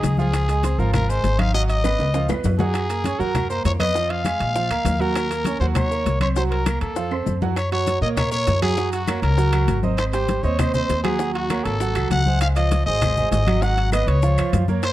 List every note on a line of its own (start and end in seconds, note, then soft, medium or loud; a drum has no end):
0.00 0.73 C#2 medium
0.00 0.13 D#4 medium
0.00 0.17 G#4 medium
0.00 0.13 D#5 medium
0.00 0.13 D#6 medium
0.00 high bongo soft
0.00 low bongo medium
0.00 high conga medium
0.00 high timbale medium
0.00 maracas medium
0.18 0.43 F3 medium
0.18 0.43 F4 medium
0.18 0.81 G#4 loud
0.18 0.43 F5 medium
0.18 high bongo soft
0.18 high conga medium
0.18 maracas soft
0.33 high bongo medium
0.33 high timbale medium
0.33 claves medium
0.33 maracas medium
0.48 0.61 G#3 medium
0.48 0.61 G#4 medium
0.48 0.61 G#5 medium
0.48 high bongo soft
0.48 high conga soft
0.48 high timbale medium
0.48 maracas medium
0.63 0.76 C4 medium
0.63 0.76 C5 medium
0.63 0.76 C6 medium
0.63 high bongo soft
0.63 high conga medium
0.63 high timbale medium
0.63 maracas medium
0.78 1.21 G#1 loud
0.78 1.04 F3 medium
0.78 1.04 F4 medium
0.78 0.93 A#4 medium
0.78 1.04 F5 medium
0.78 high bongo soft
0.78 high conga soft
0.78 maracas soft
0.93 1.11 A#4 loud
0.93 high bongo medium
0.93 high conga soft
0.93 low conga medium
0.93 high timbale medium
0.93 claves medium
0.93 maracas medium
1.09 1.34 G#3 medium
1.09 1.34 G#4 medium
1.09 1.41 C5 loud
1.09 1.34 G#5 medium
1.09 high conga soft
1.09 maracas medium
1.24 1.94 G#1 medium
1.24 high bongo soft
1.24 low bongo medium
1.24 high conga soft
1.24 high timbale medium
1.24 maracas medium
1.39 1.51 D#4 medium
1.39 1.51 D#5 medium
1.39 1.54 F5 loud
1.39 1.51 D#6 medium
1.39 high bongo soft
1.39 high conga medium
1.39 high timbale loud
1.39 claves medium
1.39 maracas soft
1.54 1.79 F#3 medium
1.54 1.79 F#4 medium
1.54 1.61 D#5 loud
1.54 1.79 F#5 medium
1.54 high bongo medium
1.54 maracas medium
1.69 2.29 D#5 loud
1.69 high bongo soft
1.69 high conga soft
1.69 high timbale medium
1.69 maracas medium
1.84 2.09 B3 medium
1.84 2.09 B4 medium
1.84 2.09 B5 medium
1.84 high bongo medium
1.84 high conga loud
1.84 high timbale medium
1.84 claves medium
1.84 maracas medium
1.99 2.27 C#2 loud
1.99 high bongo soft
1.99 high conga soft
1.99 high timbale medium
1.99 maracas soft
2.14 2.27 F3 medium
2.14 2.27 F4 medium
2.14 2.27 F5 medium
2.14 high bongo medium
2.14 high timbale medium
2.14 maracas medium
2.29 2.44 F2 medium
2.29 2.54 B3 medium
2.29 2.54 B4 medium
2.29 2.55 B5 medium
2.29 high bongo loud
2.29 low timbale medium
2.29 claves medium
2.29 maracas medium
2.44 3.14 F#2 medium
2.44 high conga medium
2.44 low timbale medium
2.44 maracas medium
2.59 2.84 F#3 medium
2.59 2.84 F#4 medium
2.59 3.21 G#4 medium
2.59 2.85 F#5 medium
2.59 low bongo loud
2.59 high conga medium
2.59 low timbale medium
2.59 maracas soft
2.74 high bongo medium
2.74 high conga soft
2.74 high timbale medium
2.74 claves medium
2.74 maracas medium
2.89 3.02 A#3 medium
2.89 3.02 A#4 medium
2.89 3.02 A#5 medium
2.89 high bongo soft
2.89 high conga soft
2.89 high timbale medium
2.89 maracas medium
3.04 3.17 C#4 medium
3.04 3.17 C#5 medium
3.04 3.17 C#6 medium
3.04 high bongo medium
3.04 high conga medium
3.04 high timbale medium
3.04 maracas medium
3.19 3.62 F#2 loud
3.19 3.44 F#3 medium
3.19 3.44 F#4 medium
3.19 3.49 A#4 medium
3.19 3.45 F#5 medium
3.19 high bongo soft
3.19 high conga soft
3.19 maracas soft
3.35 high bongo medium
3.35 high conga soft
3.35 low conga medium
3.35 high timbale medium
3.35 claves medium
3.35 maracas medium
3.50 3.75 A#3 medium
3.50 3.75 A#4 medium
3.50 3.64 C5 medium
3.50 3.75 A#5 medium
3.50 maracas medium
3.65 4.35 F2 medium
3.65 3.72 C#5 medium
3.65 high bongo soft
3.65 low bongo medium
3.65 high conga soft
3.65 high timbale medium
3.65 low timbale medium
3.65 maracas medium
3.80 3.92 B3 medium
3.80 3.92 B4 medium
3.80 4.12 D#5 loud
3.80 3.93 B5 medium
3.80 high bongo soft
3.80 high conga medium
3.80 high timbale loud
3.80 claves medium
3.80 maracas soft
3.95 4.20 F3 medium
3.95 4.20 F4 medium
3.95 4.20 F5 medium
3.95 high bongo medium
3.95 maracas medium
4.10 5.02 F5 loud
4.10 high bongo soft
4.10 high conga soft
4.10 high timbale medium
4.25 4.50 G#3 medium
4.25 4.50 G#4 medium
4.25 4.50 G#5 medium
4.25 high bongo medium
4.25 high conga medium
4.25 high timbale loud
4.25 claves medium
4.25 maracas medium
4.40 4.68 A#1 loud
4.40 high bongo soft
4.40 high conga soft
4.40 high timbale medium
4.40 maracas soft
4.55 4.68 F3 medium
4.55 4.68 F4 medium
4.55 4.68 F5 medium
4.55 high bongo medium
4.55 high conga soft
4.55 maracas medium
4.70 4.84 D2 medium
4.70 4.95 A#3 medium
4.70 4.95 A#4 medium
4.70 4.96 A#5 medium
4.70 high conga soft
4.70 high timbale medium
4.70 claves medium
4.70 maracas medium
4.85 5.55 D#2 loud
4.85 high bongo soft
4.85 low bongo medium
4.85 high conga medium
4.85 high timbale medium
4.85 low timbale medium
4.85 maracas medium
4.99 5.25 F#3 medium
4.99 5.25 F#4 medium
4.99 5.59 A#4 loud
4.99 5.25 F#5 medium
4.99 high bongo soft
4.99 high conga medium
4.99 maracas soft
5.15 high bongo medium
5.15 high conga soft
5.15 high timbale medium
5.15 claves medium
5.15 maracas medium
5.30 5.43 A#3 medium
5.30 5.43 A#4 medium
5.30 5.43 A#5 medium
5.30 high bongo soft
5.30 high conga soft
5.30 high timbale medium
5.30 maracas medium
5.45 5.58 C#4 medium
5.45 5.58 C#5 medium
5.45 5.58 C#6 medium
5.45 high bongo medium
5.45 high conga loud
5.45 high timbale medium
5.45 maracas medium
5.60 6.02 D#2 loud
5.60 5.86 F#3 medium
5.60 5.86 F#4 loud
5.60 5.67 C5 medium
5.60 5.86 F#5 medium
5.60 high bongo soft
5.60 high conga soft
5.60 maracas soft
5.75 6.18 C#5 medium
5.75 high bongo medium
5.75 high conga soft
5.75 low conga medium
5.75 high timbale medium
5.75 claves medium
5.75 maracas medium
5.91 6.15 A#3 medium
5.91 6.16 A#4 medium
5.91 6.16 A#5 medium
5.91 high conga soft
5.91 maracas medium
6.05 6.76 C2 medium
6.05 high bongo soft
6.05 low bongo medium
6.05 high conga soft
6.05 high timbale medium
6.05 maracas medium
6.20 6.33 C4 medium
6.20 6.34 C5 medium
6.20 6.28 C#5 medium
6.20 6.34 C6 medium
6.20 high bongo soft
6.20 high conga medium
6.20 high timbale medium
6.20 claves medium
6.20 maracas soft
6.36 6.61 F#3 medium
6.36 6.61 F#4 medium
6.36 6.43 C5 medium
6.36 6.61 F#5 medium
6.36 high bongo medium
6.36 maracas medium
6.51 6.79 A#4 medium
6.51 high bongo soft
6.51 high conga soft
6.51 high timbale medium
6.66 6.91 A#3 medium
6.66 6.92 A#4 medium
6.66 6.92 A#5 medium
6.66 high bongo medium
6.66 high conga loud
6.66 high timbale loud
6.66 claves medium
6.66 maracas medium
6.81 7.23 F2 medium
6.81 7.38 A4 medium
6.81 high bongo soft
6.81 high conga soft
6.81 high timbale medium
6.81 maracas soft
6.96 7.09 F3 medium
6.96 7.09 F4 medium
6.96 7.09 F5 medium
6.96 high bongo medium
6.96 high conga soft
6.96 maracas medium
7.11 7.36 C4 medium
7.11 7.36 C5 medium
7.11 7.37 C6 medium
7.11 high conga soft
7.11 high timbale medium
7.11 claves medium
7.26 7.97 F#2 medium
7.26 high bongo soft
7.26 low bongo medium
7.26 high conga medium
7.26 maracas medium
7.41 7.54 F#3 medium
7.41 7.54 F#4 medium
7.41 7.55 F#5 medium
7.41 high bongo soft
7.41 high conga medium
7.41 low timbale medium
7.41 maracas soft
7.56 7.71 C#5 medium
7.56 high bongo medium
7.56 high timbale medium
7.56 claves medium
7.56 maracas medium
7.72 7.97 F#3 medium
7.72 7.97 F#4 medium
7.72 8.00 C#5 medium
7.72 7.97 F#5 medium
7.72 high bongo soft
7.72 high conga soft
7.72 high timbale medium
7.87 high bongo medium
7.87 high conga medium
7.87 high timbale medium
7.87 maracas medium
8.01 8.44 A#2 loud
8.01 8.14 A#3 medium
8.01 8.15 A#4 medium
8.01 8.15 C#5 medium
8.01 8.09 D#5 medium
8.01 high bongo soft
8.01 high conga soft
8.01 maracas soft
8.17 8.30 A#3 medium
8.17 8.30 A#4 medium
8.17 8.31 C#5 loud
8.17 8.30 C#5 medium
8.17 high bongo medium
8.17 high conga soft
8.17 low conga medium
8.17 high timbale medium
8.17 claves medium
8.17 maracas medium
8.32 8.57 A#3 medium
8.32 8.57 A#4 medium
8.32 8.60 C#5 loud
8.32 8.57 C#5 medium
8.32 high conga soft
8.32 maracas medium
8.47 9.17 F#2 medium
8.47 high bongo soft
8.47 low bongo medium
8.47 high conga soft
8.47 high timbale medium
8.47 low timbale medium
8.47 maracas medium
8.62 8.75 F#3 medium
8.62 8.75 F#4 medium
8.62 8.90 G#4 medium
8.62 8.75 F#5 medium
8.62 high bongo soft
8.62 high conga medium
8.62 high timbale medium
8.62 claves medium
8.62 maracas soft
8.77 9.02 F#3 medium
8.77 9.02 F#4 medium
8.77 9.02 F#5 medium
8.77 high bongo medium
8.77 high conga soft
8.77 maracas medium
8.92 9.21 F#4 medium
8.92 high bongo soft
8.92 high conga soft
8.92 high timbale medium
8.92 maracas medium
9.07 9.32 A#3 medium
9.07 9.33 A#4 medium
9.07 9.33 C#5 medium
9.07 high bongo medium
9.07 high conga loud
9.07 high timbale loud
9.07 claves medium
9.07 maracas medium
9.22 9.65 C#2 loud
9.22 9.79 A#4 loud
9.22 high bongo soft
9.22 high conga soft
9.22 high timbale medium
9.22 maracas soft
9.37 9.51 F#3 medium
9.37 9.51 F#4 medium
9.37 9.51 F#5 medium
9.37 high bongo medium
9.37 high conga soft
9.37 maracas medium
9.53 9.78 F#3 medium
9.53 9.78 F#4 medium
9.53 9.78 F#5 medium
9.53 high conga soft
9.53 high timbale medium
9.53 claves medium
9.53 maracas medium
9.67 10.38 G#1 medium
9.67 high bongo soft
9.67 low bongo medium
9.67 high conga medium
9.67 high timbale medium
9.67 maracas medium
9.83 10.08 C4 medium
9.83 10.08 C5 medium
9.83 10.08 D#5 medium
9.83 high bongo soft
9.83 high conga medium
9.83 maracas soft
9.97 10.04 C5 medium
9.97 high bongo medium
9.97 high timbale medium
9.97 claves medium
9.97 maracas medium
10.13 10.38 G3 medium
10.13 10.39 G4 medium
10.13 10.44 C5 medium
10.13 10.39 G5 medium
10.13 high bongo soft
10.13 high conga soft
10.13 high timbale medium
10.13 maracas medium
10.28 high bongo medium
10.28 high conga medium
10.28 high timbale medium
10.28 maracas medium
10.42 10.86 D#2 loud
10.42 10.56 C4 medium
10.42 10.56 C5 medium
10.42 10.61 C#5 medium
10.42 10.57 D#5 medium
10.42 high bongo soft
10.42 high conga soft
10.42 maracas soft
10.59 10.72 C4 medium
10.59 10.74 C5 loud
10.59 10.72 C5 medium
10.59 10.72 D#5 medium
10.59 high bongo medium
10.59 high conga soft
10.59 low conga medium
10.59 high timbale loud
10.59 claves medium
10.59 maracas medium
10.74 10.99 C4 medium
10.74 10.99 C5 medium
10.74 11.03 C5 loud
10.74 10.99 D#5 medium
10.74 high conga soft
10.74 low conga medium
10.74 maracas medium
10.89 11.60 D#2 medium
10.89 high bongo soft
10.89 low bongo medium
10.89 high conga soft
10.89 high timbale medium
10.89 maracas medium
11.03 11.17 F#3 medium
11.03 11.17 F#4 medium
11.03 11.32 G#4 medium
11.03 11.17 F#5 medium
11.03 high bongo soft
11.03 high conga loud
11.03 high timbale loud
11.03 claves medium
11.03 maracas soft
11.19 11.44 F#3 medium
11.19 11.45 F#4 medium
11.19 11.45 F#5 medium
11.19 high bongo medium
11.19 high conga soft
11.19 maracas medium
11.34 11.66 F#4 loud
11.34 high bongo soft
11.34 high conga soft
11.34 high timbale medium
11.50 11.75 A#3 medium
11.50 11.75 A#4 medium
11.50 11.75 C#5 medium
11.50 high bongo medium
11.50 high conga medium
11.50 high timbale medium
11.50 claves medium
11.50 maracas medium
11.64 11.93 G#1 loud
11.64 12.10 A4 loud
11.64 high bongo soft
11.64 high conga soft
11.64 high timbale medium
11.64 maracas soft
11.80 11.93 F#3 medium
11.80 11.93 F#4 medium
11.80 11.93 F#5 medium
11.80 high bongo medium
11.80 high conga soft
11.80 maracas medium
11.95 12.09 C2 medium
11.95 12.21 F#3 medium
11.95 12.21 F#4 medium
11.95 12.21 F#5 medium
11.95 high conga soft
11.95 high timbale medium
11.95 claves medium
11.95 maracas medium
12.10 12.81 C#2 medium
12.10 12.39 F#5 loud
12.10 high bongo soft
12.10 low bongo medium
12.10 high conga medium
12.10 high timbale medium
12.10 maracas medium
12.26 12.51 G#3 medium
12.26 12.51 G#4 medium
12.26 12.51 C5 medium
12.26 high bongo soft
12.26 high conga medium
12.26 maracas soft
12.41 12.48 F5 loud
12.41 high bongo medium
12.41 high conga soft
12.41 high timbale loud
12.41 claves medium
12.41 maracas medium
12.56 12.81 F3 medium
12.56 12.81 F4 medium
12.56 12.84 D#5 loud
12.56 12.82 F5 medium
12.56 high bongo soft
12.56 high conga soft
12.56 high timbale medium
12.56 maracas medium
12.71 high bongo medium
12.71 high conga loud
12.71 high timbale medium
12.71 maracas medium
12.86 13.29 G#1 medium
12.86 12.99 G#3 medium
12.86 12.99 G#4 medium
12.86 12.99 C5 medium
12.86 13.29 D#5 loud
12.86 high bongo soft
12.86 high conga soft
12.86 maracas soft
13.02 13.14 G#3 medium
13.02 13.15 G#4 medium
13.02 13.15 C5 medium
13.02 high bongo medium
13.02 high conga soft
13.02 low conga medium
13.02 high timbale loud
13.02 claves medium
13.02 maracas medium
13.17 13.42 G#3 medium
13.17 13.42 G#4 medium
13.17 13.42 C5 medium
13.17 high conga soft
13.17 low conga medium
13.17 maracas medium
13.31 14.02 G#1 medium
13.31 13.64 D#5 loud
13.31 high bongo soft
13.31 low bongo medium
13.31 high timbale medium
13.31 low timbale medium
13.31 maracas medium
13.47 13.59 F#3 medium
13.47 13.60 F#4 medium
13.47 13.60 F#5 medium
13.47 high bongo soft
13.47 high conga loud
13.47 high timbale medium
13.47 claves medium
13.47 maracas soft
13.62 13.87 F#3 medium
13.62 13.87 F#4 medium
13.62 13.92 F#5 loud
13.62 13.88 F#5 medium
13.62 high bongo medium
13.62 maracas medium
13.77 high bongo soft
13.77 high conga soft
13.77 high timbale medium
13.92 14.17 B3 medium
13.92 14.17 B4 medium
13.92 14.09 D#5 loud
13.92 14.18 D#5 medium
13.92 high bongo medium
13.92 high conga medium
13.92 high timbale loud
13.92 claves medium
13.92 maracas medium
14.07 14.35 C#2 loud
14.07 14.53 C#5 medium
14.07 high bongo soft
14.07 high conga soft
14.07 high timbale medium
14.07 maracas soft
14.22 14.36 F3 medium
14.22 14.36 F4 medium
14.22 14.36 F5 medium
14.22 high bongo medium
14.22 high conga soft
14.22 maracas medium
14.38 14.52 F2 medium
14.38 14.63 F3 medium
14.38 14.63 F4 medium
14.38 14.63 F5 medium
14.38 high conga soft
14.38 high timbale medium
14.38 claves medium
14.38 maracas medium
14.53 14.93 F#2 medium
14.53 high bongo soft
14.53 low bongo medium
14.53 high conga medium
14.53 high timbale medium
14.53 low timbale medium
14.53 maracas medium
14.68 14.93 A#3 medium
14.68 14.93 A#4 medium
14.68 14.93 C#5 medium
14.68 high bongo soft
14.68 high conga medium
14.68 maracas soft
14.83 14.91 C5 loud
14.83 high bongo medium
14.83 high timbale loud
14.83 claves medium
14.83 maracas medium